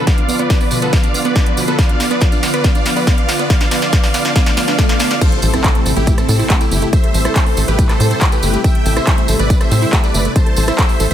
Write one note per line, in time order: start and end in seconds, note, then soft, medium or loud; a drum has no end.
0.00 5.17 D3 medium
0.00 5.17 F3 medium
0.00 5.17 B3 medium
0.00 5.17 F4 medium
0.07 0.14 B3 medium
0.07 0.36 D5 medium
0.07 0.36 F5 medium
0.07 kick loud
0.07 snare medium
0.07 closed hi-hat medium
0.07 tambourine soft
0.18 0.25 D4 medium
0.18 closed hi-hat medium
0.29 0.38 B3 medium
0.29 open hi-hat loud
0.29 tambourine medium
0.38 0.50 B3 loud
0.38 0.77 B4 medium
0.38 0.77 D5 medium
0.38 closed hi-hat medium
0.38 tambourine soft
0.50 0.60 D4 medium
0.50 kick loud
0.50 snare medium
0.50 closed hi-hat medium
0.50 tambourine medium
0.61 0.68 B3 medium
0.61 open hi-hat medium
0.61 tambourine soft
0.71 0.79 B2 loud
0.71 open hi-hat loud
0.71 tambourine medium
0.82 0.91 B3 medium
0.82 0.91 A4 medium
0.82 0.91 B4 medium
0.82 closed hi-hat medium
0.82 tambourine soft
0.93 1.00 B3 medium
0.93 1.21 D5 medium
0.93 1.21 F5 loud
0.93 kick loud
0.93 snare medium
0.93 closed hi-hat medium
0.93 tambourine medium
1.03 1.11 D4 medium
1.03 closed hi-hat medium
1.03 tambourine soft
1.14 1.24 B3 medium
1.14 open hi-hat loud
1.14 tambourine medium
1.25 1.35 B3 loud
1.25 1.63 B4 medium
1.25 1.63 D5 loud
1.25 closed hi-hat soft
1.25 tambourine soft
1.35 1.46 D4 medium
1.35 kick loud
1.35 snare medium
1.35 closed hi-hat medium
1.35 tambourine soft
1.46 1.54 B3 medium
1.46 closed hi-hat medium
1.57 1.64 B2 loud
1.57 open hi-hat loud
1.57 tambourine medium
1.67 1.77 B3 medium
1.67 1.77 A4 medium
1.67 1.77 B4 medium
1.67 closed hi-hat medium
1.67 tambourine soft
1.79 1.86 B3 medium
1.79 2.07 D5 medium
1.79 2.07 F5 loud
1.79 kick loud
1.79 snare medium
1.79 closed hi-hat medium
1.79 tambourine medium
1.89 1.96 D4 medium
1.89 closed hi-hat medium
2.00 2.09 B3 medium
2.00 snare medium
2.00 open hi-hat loud
2.00 tambourine medium
2.11 2.20 B3 loud
2.11 2.20 B4 medium
2.11 2.20 D5 medium
2.11 closed hi-hat medium
2.11 tambourine soft
2.21 2.29 B3 medium
2.21 2.50 F5 loud
2.21 kick loud
2.21 snare medium
2.21 closed hi-hat medium
2.21 tambourine soft
2.32 2.39 D4 medium
2.32 closed hi-hat soft
2.32 tambourine soft
2.43 2.52 B3 medium
2.43 snare medium
2.43 open hi-hat loud
2.43 tambourine medium
2.54 2.63 B3 loud
2.54 2.63 B4 medium
2.54 2.63 D5 medium
2.54 closed hi-hat medium
2.64 2.71 B3 medium
2.64 2.93 D5 medium
2.64 2.93 F5 loud
2.64 kick loud
2.64 snare medium
2.64 closed hi-hat medium
2.64 tambourine soft
2.75 2.82 D4 medium
2.75 closed hi-hat medium
2.75 tambourine soft
2.85 2.95 B3 medium
2.85 snare medium
2.85 open hi-hat loud
2.85 tambourine medium
2.96 3.05 B3 loud
2.96 3.05 B4 medium
2.96 3.06 D5 loud
2.96 open hi-hat medium
2.96 tambourine soft
3.07 3.36 D5 medium
3.07 3.36 F5 loud
3.07 kick loud
3.07 snare medium
3.07 closed hi-hat medium
3.07 tambourine medium
3.18 3.25 D4 medium
3.18 closed hi-hat medium
3.29 3.38 B3 medium
3.29 snare medium
3.29 open hi-hat loud
3.29 tambourine medium
3.39 3.48 B3 loud
3.39 3.48 B4 medium
3.39 3.48 D5 medium
3.39 closed hi-hat medium
3.39 tambourine soft
3.50 3.57 B3 medium
3.50 3.70 D5 medium
3.50 3.70 F5 loud
3.50 kick loud
3.50 snare medium
3.50 closed hi-hat medium
3.50 tambourine medium
3.61 3.68 D4 medium
3.61 snare medium
3.61 closed hi-hat medium
3.61 tambourine soft
3.71 3.79 B3 medium
3.71 3.91 D5 medium
3.71 3.91 F5 loud
3.71 snare medium
3.71 open hi-hat loud
3.71 tambourine medium
3.82 3.89 D4 medium
3.82 snare medium
3.82 closed hi-hat medium
3.82 tambourine soft
3.93 4.00 B3 medium
3.93 4.13 D5 medium
3.93 4.13 F5 loud
3.93 kick loud
3.93 snare medium
3.93 closed hi-hat medium
3.93 tambourine medium
4.04 4.11 D4 medium
4.04 snare medium
4.04 open hi-hat medium
4.04 tambourine soft
4.14 4.21 B3 medium
4.14 4.34 D5 medium
4.14 4.34 F5 loud
4.14 snare loud
4.14 open hi-hat loud
4.14 tambourine loud
4.25 4.32 D4 medium
4.25 snare medium
4.25 closed hi-hat medium
4.25 tambourine soft
4.35 4.43 B3 medium
4.35 4.55 D5 medium
4.35 4.55 F5 loud
4.35 kick loud
4.35 snare loud
4.35 closed hi-hat medium
4.35 tambourine medium
4.35 swell medium
4.46 4.54 D4 medium
4.46 snare medium
4.46 closed hi-hat medium
4.46 tambourine soft
4.57 4.64 B3 medium
4.57 4.77 D5 medium
4.57 4.77 F5 loud
4.57 snare loud
4.57 open hi-hat loud
4.57 tambourine medium
4.68 4.75 D4 medium
4.68 snare medium
4.68 closed hi-hat medium
4.68 tambourine soft
4.78 4.86 B3 medium
4.78 4.98 D5 medium
4.78 kick loud
4.78 snare loud
4.78 closed hi-hat medium
4.78 tambourine medium
4.89 4.96 D4 medium
4.89 snare medium
4.89 closed hi-hat medium
4.99 5.07 B3 medium
4.99 5.20 D5 medium
4.99 5.20 F5 loud
4.99 snare loud
4.99 open hi-hat loud
4.99 tambourine medium
5.10 5.18 D4 medium
5.10 snare loud
5.10 closed hi-hat medium
5.10 tambourine soft
5.21 11.14 C3 medium
5.21 11.14 G3 medium
5.21 11.14 A3 medium
5.21 5.32 A3 medium
5.21 11.14 E4 loud
5.21 5.50 A4 medium
5.21 5.50 C5 loud
5.21 kick loud
5.21 closed hi-hat loud
5.21 crash loud
5.21 tambourine medium
5.21 impact medium
5.32 5.39 A4 medium
5.32 closed hi-hat medium
5.42 5.57 A1 loud
5.42 5.50 A4 medium
5.42 open hi-hat loud
5.42 tambourine loud
5.53 5.91 C4 medium
5.53 5.64 E4 loud
5.53 5.91 A4 loud
5.53 cross-stick medium
5.53 closed hi-hat medium
5.53 tambourine soft
5.64 5.71 A3 medium
5.64 kick loud
5.64 clap loud
5.64 closed hi-hat loud
5.64 tambourine soft
5.75 5.79 A3 medium
5.75 closed hi-hat medium
5.86 5.93 A1 medium
5.86 5.93 A4 loud
5.86 open hi-hat loud
5.86 tambourine medium
5.96 6.11 A1 medium
5.96 6.04 A3 medium
5.96 6.15 E4 medium
5.96 6.15 G4 medium
5.96 closed hi-hat medium
5.96 tambourine soft
6.07 6.17 A2 loud
6.07 kick loud
6.07 closed hi-hat loud
6.07 tambourine medium
6.18 6.56 C4 medium
6.18 6.56 A4 loud
6.18 6.22 A4 medium
6.18 cross-stick medium
6.18 closed hi-hat medium
6.18 tambourine soft
6.29 6.43 A2 loud
6.29 6.36 A4 medium
6.29 open hi-hat loud
6.29 tambourine medium
6.39 6.50 E4 loud
6.39 open hi-hat medium
6.39 tambourine soft
6.50 6.57 A3 medium
6.50 kick loud
6.50 clap loud
6.50 closed hi-hat medium
6.50 tambourine medium
6.61 6.89 E4 medium
6.61 6.89 G4 loud
6.61 6.71 A4 medium
6.61 closed hi-hat medium
6.61 tambourine soft
6.71 6.86 G1 loud
6.71 6.76 A3 medium
6.71 open hi-hat loud
6.71 tambourine medium
6.82 6.89 A3 medium
6.82 closed hi-hat medium
6.82 tambourine soft
6.93 7.03 A3 medium
6.93 7.21 C5 medium
6.93 7.21 E5 loud
6.93 kick loud
6.93 closed hi-hat medium
6.93 tambourine soft
7.04 7.11 A4 medium
7.04 closed hi-hat medium
7.14 7.28 A1 loud
7.14 7.21 A4 medium
7.14 open hi-hat loud
7.14 tambourine medium
7.25 7.35 E4 loud
7.25 7.63 A4 medium
7.25 7.63 C5 medium
7.25 cross-stick medium
7.25 closed hi-hat medium
7.25 tambourine soft
7.36 7.43 A3 medium
7.36 kick loud
7.36 clap loud
7.36 closed hi-hat loud
7.36 tambourine medium
7.46 7.51 A3 medium
7.46 open hi-hat medium
7.57 7.64 A1 medium
7.57 7.64 A4 loud
7.57 open hi-hat loud
7.57 tambourine medium
7.68 7.82 A1 medium
7.68 7.75 A3 medium
7.68 7.87 G4 medium
7.68 7.87 B4 medium
7.68 closed hi-hat medium
7.68 tambourine soft
7.79 7.89 A2 loud
7.79 kick loud
7.79 closed hi-hat loud
7.79 tambourine medium
7.89 8.27 A4 medium
7.89 7.94 A4 medium
7.89 8.27 C5 loud
7.89 cross-stick medium
7.89 clap soft
7.89 closed hi-hat medium
7.89 tambourine soft
8.00 8.14 A2 loud
8.00 8.07 A4 medium
8.00 open hi-hat loud
8.00 tambourine medium
8.11 8.21 E4 loud
8.11 closed hi-hat medium
8.11 tambourine soft
8.21 8.29 A3 medium
8.21 kick loud
8.21 clap loud
8.21 closed hi-hat medium
8.21 tambourine medium
8.32 8.61 G4 medium
8.32 8.42 A4 medium
8.32 8.61 B4 loud
8.32 closed hi-hat medium
8.32 tambourine soft
8.42 8.57 G1 loud
8.42 8.47 A3 medium
8.42 open hi-hat loud
8.42 tambourine loud
8.54 8.61 A3 medium
8.54 closed hi-hat medium
8.54 tambourine soft
8.64 8.75 A3 medium
8.64 8.93 E5 medium
8.64 8.93 G5 loud
8.64 kick loud
8.64 closed hi-hat medium
8.64 tambourine medium
8.75 8.82 A4 medium
8.75 closed hi-hat medium
8.86 9.00 A1 loud
8.86 8.93 A4 medium
8.86 open hi-hat loud
8.86 tambourine medium
8.96 9.07 E4 loud
8.96 9.34 C5 medium
8.96 9.34 E5 loud
8.96 cross-stick medium
8.96 closed hi-hat medium
8.96 tambourine soft
9.07 9.14 A3 medium
9.07 kick loud
9.07 clap loud
9.07 closed hi-hat medium
9.07 tambourine medium
9.18 9.22 A3 medium
9.18 closed hi-hat soft
9.28 9.36 A1 medium
9.28 9.36 A4 loud
9.28 open hi-hat loud
9.28 tambourine loud
9.39 9.53 A1 medium
9.39 9.46 A3 medium
9.39 9.58 B4 medium
9.39 9.58 D5 medium
9.39 closed hi-hat medium
9.39 tambourine soft
9.50 9.60 A2 loud
9.50 kick loud
9.50 closed hi-hat medium
9.50 tambourine medium
9.61 9.65 A4 medium
9.61 9.99 C5 medium
9.61 9.99 E5 loud
9.61 cross-stick medium
9.61 closed hi-hat medium
9.61 tambourine soft
9.71 9.86 A2 loud
9.71 9.79 A4 medium
9.71 open hi-hat loud
9.71 tambourine loud
9.82 9.92 E4 loud
9.82 open hi-hat medium
9.82 tambourine soft
9.93 10.00 A3 medium
9.93 kick loud
9.93 clap loud
9.93 closed hi-hat medium
9.93 tambourine medium
10.04 10.14 A4 medium
10.04 10.32 B4 medium
10.04 10.32 D5 loud
10.04 closed hi-hat medium
10.04 tambourine soft
10.14 10.28 G1 loud
10.14 10.19 A3 medium
10.14 open hi-hat loud
10.14 tambourine loud
10.25 10.32 A3 medium
10.25 closed hi-hat medium
10.36 10.46 A3 medium
10.36 10.64 C5 medium
10.36 10.64 A5 loud
10.36 kick loud
10.36 closed hi-hat medium
10.36 tambourine medium
10.46 10.54 A4 medium
10.46 closed hi-hat medium
10.56 10.71 A1 loud
10.56 10.64 A4 medium
10.56 open hi-hat loud
10.56 tambourine loud
10.68 10.78 E4 loud
10.68 11.06 C5 medium
10.68 11.06 E5 loud
10.68 cross-stick medium
10.68 closed hi-hat medium
10.79 10.86 A3 medium
10.79 kick loud
10.79 clap loud
10.79 closed hi-hat medium
10.79 tambourine medium
10.89 10.94 A3 medium
10.89 open hi-hat medium
10.89 tambourine soft
11.00 11.07 A1 medium
11.00 11.07 A4 loud
11.00 open hi-hat loud
11.00 tambourine loud
11.11 11.14 A1 medium
11.11 11.14 A3 medium
11.11 11.14 C5 medium
11.11 11.14 E5 medium
11.11 closed hi-hat medium
11.11 tambourine soft